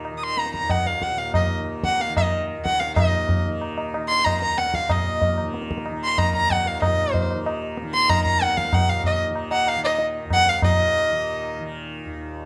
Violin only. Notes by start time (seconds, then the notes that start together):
0.18 D#6
0.24 C6
0.39 A#5
0.55 A#5
0.71 F#5
0.87 F5
1.03 F#5
1.19 F5
1.35 D#5
1.85 F#5
2.01 F5
2.17 D#5
2.65 F#5
2.80 F5
2.95 D#5
4.08 C6
4.25 A#5
4.42 A#5
4.58 F#5
4.75 F5
4.91 D#5
6.04 C6
6.19 A#5
6.36 A#5
6.53 F#5
6.67 F5
6.83 D#5
7.12 C5
7.94 C6
8.10 A#5
8.26 A#5
8.43 F#5
8.58 F5
8.74 F#5
8.90 F5
9.06 D#5
9.52 F#5
9.69 F5
9.84 D#5
10.33 F#5
10.49 F5
10.64 D#5